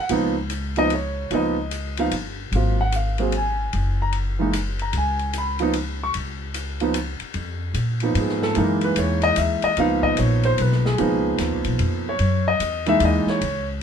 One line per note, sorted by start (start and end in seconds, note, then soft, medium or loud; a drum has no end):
0.00 0.11 F#5 medium
0.09 1.27 C#2 medium
0.09 0.33 F3 medium
0.09 0.34 A#3 medium
0.09 0.34 B3 medium
0.09 0.35 D#4 medium
0.09 ride medium
0.50 hi-hat pedal medium
0.50 ride medium
0.76 0.90 F3 medium
0.76 0.90 A#3 soft
0.76 0.90 B3 medium
0.76 0.90 D#4 medium
0.76 0.91 D#5 medium
0.76 ride soft
0.90 1.30 C#5 medium
0.90 ride medium
1.30 2.07 C#2 medium
1.30 1.55 F3 medium
1.30 1.55 A#3 medium
1.30 1.55 B3 medium
1.30 1.56 D#4 medium
1.30 ride soft
1.35 1.95 D#5 medium
1.71 hi-hat pedal soft
1.71 ride medium
1.97 2.11 F3 medium
1.97 2.11 A#3 soft
1.97 2.11 B3 soft
1.97 2.12 D#4 medium
1.97 2.13 F5 medium
1.97 ride soft
2.11 2.49 G1 medium
2.11 ride medium
2.52 3.69 G#1 medium
2.52 2.76 F#3 soft
2.52 2.77 A#3 soft
2.52 2.77 C4 soft
2.52 2.77 F4 medium
2.52 ride medium
2.81 2.93 F#5 medium
2.92 3.32 F5 medium
2.92 hi-hat pedal medium
2.92 ride medium
3.18 3.31 F#3 medium
3.18 3.32 A#3 medium
3.18 3.32 C4 medium
3.18 3.33 G#4 medium
3.18 ride soft
3.32 ride medium
3.37 3.97 G#5 medium
3.73 4.90 F#1 medium
3.73 ride medium
4.02 4.14 A#5 medium
4.12 ride medium
4.39 4.52 E3 medium
4.39 4.53 G#3 soft
4.39 4.53 A#3 medium
4.39 4.53 D#4 medium
4.53 hi-hat pedal medium
4.53 ride medium
4.79 4.95 A#5 medium
4.79 ride soft
4.93 6.10 C#2 medium
4.93 ride medium
4.97 5.33 G#5 medium
5.19 ride soft
5.33 hi-hat pedal medium
5.33 ride medium
5.38 5.98 B5 medium
5.59 5.73 F3 medium
5.59 5.73 A#3 medium
5.59 5.74 B3 medium
5.59 5.74 D#4 medium
5.59 ride soft
5.73 ride medium
6.03 6.11 C#6 medium
6.14 7.18 C#2 medium
6.14 ride medium
6.54 hi-hat pedal medium
6.54 ride medium
6.80 6.94 F3 medium
6.80 6.94 A#3 soft
6.80 6.94 B3 medium
6.80 6.95 D#4 medium
6.80 ride soft
6.94 hi-hat pedal medium
6.94 ride medium
7.20 muted upright bass stroke soft
7.20 ride soft
7.34 7.73 F2 medium
7.34 ride medium
7.74 8.14 A#2 medium
7.74 hi-hat pedal medium
7.74 ride medium
8.00 8.54 F3 medium
8.00 8.54 A#3 medium
8.00 8.55 B3 medium
8.00 ride soft
8.04 8.55 D#4 medium
8.15 8.55 G#2 medium
8.15 ride medium
8.20 8.44 G#4 medium
8.29 snare soft
8.42 8.57 A4 medium
8.42 snare soft
8.55 8.96 F#2 medium
8.55 9.69 E3 medium
8.55 9.69 G#3 medium
8.55 9.69 A#3 medium
8.55 9.70 D#4 medium
8.55 ride medium
8.59 8.83 A#4 medium
8.81 8.97 B4 medium
8.81 ride soft
8.96 9.36 E2 medium
8.96 9.23 C#5 medium
8.96 hi-hat pedal medium
8.96 ride medium
9.22 9.37 D#5 loud
9.22 ride soft
9.36 9.61 D#2 medium
9.36 9.63 E5 medium
9.36 hi-hat pedal medium
9.36 ride medium
9.62 9.78 D#5 medium
9.62 muted upright bass stroke soft
9.62 ride soft
9.77 10.17 C#2 medium
9.77 10.90 F3 medium
9.77 10.90 A#3 medium
9.77 10.91 B3 medium
9.77 10.91 D#4 medium
9.77 10.04 F5 medium
9.77 ride medium
10.03 10.17 D#5 medium
10.03 kick soft
10.17 10.57 A#1 medium
10.17 10.44 C#5 medium
10.17 hi-hat pedal soft
10.17 ride medium
10.43 10.59 C5 medium
10.43 ride soft
10.58 10.98 B1 medium
10.58 10.85 B4 medium
10.58 ride medium
10.72 snare soft
10.85 11.36 G#4 medium
10.85 snare soft
10.98 11.38 C#2 medium
10.98 12.11 F3 medium
10.98 12.11 A#3 medium
10.98 12.12 B3 medium
10.98 12.12 D#4 medium
10.98 ride soft
11.38 11.53 D#2 medium
11.38 snare soft
11.38 hi-hat pedal soft
11.38 ride medium
11.53 11.66 C#2 medium
11.64 11.79 B1 medium
11.64 kick medium
11.64 ride soft
11.79 12.19 F2 medium
11.79 ride medium
12.09 12.45 C#5 medium
12.19 12.59 F#2 medium
12.19 ride medium
12.48 12.85 D#5 medium
12.59 12.99 E2 medium
12.59 hi-hat pedal medium
12.59 ride medium
12.86 13.38 E3 medium
12.86 13.39 G#3 medium
12.86 13.39 A#3 medium
12.86 13.39 D#4 medium
12.86 13.01 E5 loud
12.86 ride soft
13.00 13.25 D#2 medium
13.00 ride medium
13.05 13.28 D#5 medium
13.25 muted upright bass stroke soft
13.25 snare soft
13.29 13.66 C#5 medium
13.41 13.80 C#2 medium
13.41 ride medium